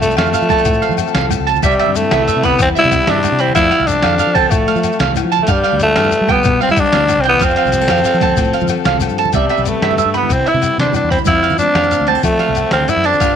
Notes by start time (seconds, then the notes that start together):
Already playing: C2 F3 C4
0.01 A3 A4, closed hi-hat, shekere
0.09 high conga, low conga, shekere
0.17 F2 A3 A4 F5, snare, closed hi-hat, low agogo
0.26 low conga, shekere
0.34 A4 F5, closed hi-hat, shekere
0.42 F3, shekere
0.49 A4 A5, kick, snare, closed hi-hat, high conga, low agogo, shekere
0.58 shekere
0.65 A2 F3, kick, closed hi-hat, low agogo, shekere
0.73 shekere
0.81 C4 F5, closed hi-hat, low conga
0.89 F3, high conga, low conga, shekere
0.98 A4, closed hi-hat, low conga, low agogo, shekere
1.06 low conga, shekere
1.13 C2 A4 F5, snare, closed hi-hat, low conga, shekere
1.21 low conga
1.30 A4, closed hi-hat, high conga, low agogo, shekere
1.39 C#2, low conga
1.47 A4 A5, closed hi-hat
1.54 low conga, shekere
1.62 C2 C3 G3 E5, kick, closed hi-hat, high conga, low agogo, shekere
1.71 shekere
1.79 G3 E5, closed hi-hat, low conga, low agogo
1.86 G2, low conga
1.96 A3 E4, closed hi-hat, shekere
2.02 high conga, low conga
2.11 C2 B4 E5, snare, closed hi-hat, low agogo, shekere
2.19 low conga
2.28 E4 E5, closed hi-hat, shekere
2.36 C3
2.43 B3 B4 B5, kick, snare, closed hi-hat, high conga, low conga, low agogo
2.51 low conga
2.59 E2 C3 C4, kick, closed hi-hat, low agogo, shekere
2.75 G3 E4 E5, closed hi-hat, shekere
2.84 C3, high conga, low conga, shekere
2.92 B3, kick, closed hi-hat, low agogo, shekere
3.01 shekere
3.07 G2 C3 D4 E5, snare, closed hi-hat, shekere
3.16 low conga
3.23 closed hi-hat, high conga, low conga, low agogo, shekere
3.32 C3
3.39 E3 C4 B5, closed hi-hat
3.48 low conga
3.55 F2 F3 A3 C4 E4 F5, kick, closed hi-hat, high conga, low agogo, shekere
3.64 shekere
3.71 F5, muted steel-string acoustic guitar stroke, closed hi-hat, low conga, low agogo
3.79 C2, low conga
3.87 D4 A4, closed hi-hat, shekere
3.95 high conga, low conga
4.03 F2 A4 F5, snare, closed hi-hat, low agogo, shekere
4.10 low conga
4.19 A4 F5, closed hi-hat, shekere
4.27 F3
4.35 C4 A4 A5, kick, snare, closed hi-hat, low conga, low agogo
4.43 low conga
4.51 A2 F3 A3, kick, closed hi-hat, low conga, low agogo, shekere
4.67 A3 F5, closed hi-hat, shekere
4.74 F3, high conga, shekere
4.83 A4, closed hi-hat, low agogo, shekere
4.92 shekere
4.99 C2 D3 F5, snare, closed hi-hat, shekere
5.08 low conga
5.15 E3, closed hi-hat, high conga, low conga, low agogo, shekere
5.24 F3
5.32 F3 A5, closed hi-hat
5.39 A3, low conga
5.47 G2 F5, kick, closed hi-hat, high conga, low agogo, shekere
5.51 G3
5.63 G3 F5, closed hi-hat, low conga, low agogo
5.72 D2, low conga
5.80 A3 F4, closed hi-hat, shekere
5.88 high conga, low conga
5.96 G2 B4 F5, snare, closed hi-hat, low agogo, shekere
6.05 low conga
6.11 F4, closed hi-hat, shekere
6.21 G3
6.28 B3 G5, kick, closed hi-hat, high conga, low conga, low agogo
6.36 low conga
6.43 G2 B2, kick, closed hi-hat, low agogo, shekere
6.61 G3 C4 F5, closed hi-hat, shekere
6.69 G3 E4, high conga, low conga, shekere
6.76 D4, kick, closed hi-hat, low agogo, shekere
6.85 shekere
6.92 D2 C3 F5, snare, closed hi-hat, shekere
7.01 low conga
7.08 D3, closed hi-hat, high conga, low conga, low agogo, shekere
7.18 C2 C4
7.24 E3 G5, closed hi-hat
7.29 B3
7.34 low conga
7.39 F2 F3 F5, kick, closed hi-hat, high conga, low agogo, shekere
7.44 C4
7.50 shekere
7.56 F5, closed hi-hat, low agogo
7.65 C2, low conga, shekere
7.72 G4, closed hi-hat, shekere
7.80 A4, high conga
7.88 F2 A4 F5, snare, closed hi-hat, low agogo, shekere
7.97 low conga, shekere
8.04 A4 F5, closed hi-hat, shekere
8.14 F3, low conga, shekere
8.21 A4 A5, kick, closed hi-hat, high conga, low agogo
8.29 low conga
8.37 A2 F3, kick, closed hi-hat, low agogo, shekere
8.44 shekere
8.53 C4 F5, closed hi-hat
8.60 F3, high conga, low conga, shekere
8.68 A4, closed hi-hat, low agogo, shekere
8.78 low conga
8.85 C2 A4 F5, snare, closed hi-hat, shekere
8.94 low conga
9.00 A4, closed hi-hat, high conga, low agogo, shekere
9.09 G2, shekere
9.18 A4 A5, closed hi-hat, low conga
9.25 low conga
9.33 C2 C3 G3 B3 E5, kick, closed hi-hat, high conga, low agogo, shekere
9.49 B4 E5, closed hi-hat, low conga, low agogo
9.57 B1, low conga, shekere
9.65 G3 A3 B3, closed hi-hat, shekere
9.75 high conga
9.81 G2 E5, snare, closed hi-hat, low conga, low agogo
9.91 low conga, shekere
9.98 G2 E5, closed hi-hat, shekere
10.05 G2, low conga
10.14 B3 E4 B5, closed hi-hat, high conga, low conga, low agogo
10.23 low conga
10.29 C3 C4, muted steel-string acoustic guitar stroke, kick, closed hi-hat, low agogo, shekere
10.46 B3 E4 E5, closed hi-hat, low conga
10.54 C3, high conga, low conga
10.62 G3 B3, closed hi-hat, low agogo, shekere
10.78 C3 D4 C5, snare, closed hi-hat, shekere
10.85 low conga
10.93 G2 D4, closed hi-hat, high conga, low agogo, shekere
11.04 E2
11.10 C4 E4 B5, kick, closed hi-hat
11.18 low conga, shekere
11.25 F2 F3 C4 E4 F5, kick, closed hi-hat, high conga, low agogo, shekere
11.42 C4 F5, closed hi-hat, low conga, low agogo
11.50 F3, low conga, shekere
11.58 A3 C4 D4, closed hi-hat, low conga, shekere
11.67 high conga
11.75 F2 F5, snare, closed hi-hat, low conga, low agogo
11.83 low conga, shekere
11.91 C3 F5, closed hi-hat, shekere
12.00 D2, low conga
12.07 C4 G4 A5, closed hi-hat, high conga, low conga, low agogo
12.15 A4, low conga
12.23 F3 A3 C4, kick, closed hi-hat, low agogo, shekere
12.39 A4 F5, snare, closed hi-hat, low conga
12.48 C2, high conga, low conga
12.55 A3 C4, closed hi-hat, low agogo, shekere
12.71 D2 D3 C4 F5, snare, closed hi-hat, shekere
12.80 low conga
12.88 E3 E4, closed hi-hat, high conga, low agogo, shekere
12.96 F#2
13.04 F3 D4 A5, closed hi-hat
13.13 low conga, shekere
13.20 G2 G3 D4 F5, kick, closed hi-hat, high conga, low agogo, shekere
13.24 F4 B4